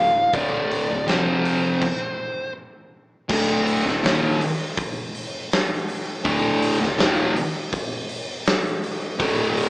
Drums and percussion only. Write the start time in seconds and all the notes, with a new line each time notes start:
0.33 kick, open hi-hat
0.71 open hi-hat
1.08 snare, open hi-hat
1.45 open hi-hat
1.82 kick, crash
3.29 kick, crash
3.67 open hi-hat
3.88 snare
4.04 snare, open hi-hat
4.41 open hi-hat
4.77 kick, open hi-hat
5.15 open hi-hat
5.52 snare, open hi-hat
5.89 open hi-hat
6.25 kick, open hi-hat
6.62 open hi-hat
6.82 snare
6.99 snare, open hi-hat
7.36 open hi-hat
7.73 kick, open hi-hat
8.09 open hi-hat
8.46 snare, open hi-hat
8.84 open hi-hat
9.20 kick, open hi-hat
9.57 open hi-hat